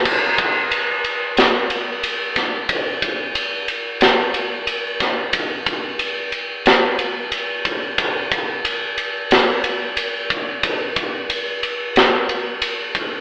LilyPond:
\new DrumStaff \with { instrumentName = "Drums" } \drummode { \time 4/4 \tempo 4 = 91 <cymc bd>8 <bd cymr>8 cymr8 cymr8 <cymr sn>8 cymr8 cymr8 <bd cymr sn>8 | <bd cymr>8 <bd cymr>8 cymr8 cymr8 <cymr sn>8 cymr8 cymr8 <bd cymr sn>8 | <bd cymr>8 <bd cymr>8 cymr8 cymr8 <cymr sn>8 cymr8 cymr8 <bd cymr>8 | <bd cymr>8 <bd cymr>8 cymr8 cymr8 <cymr sn>8 cymr8 cymr8 <bd cymr>8 |
<bd cymr>8 <bd cymr>8 cymr8 cymr8 <cymr sn>8 cymr8 cymr8 <bd cymr>8 | }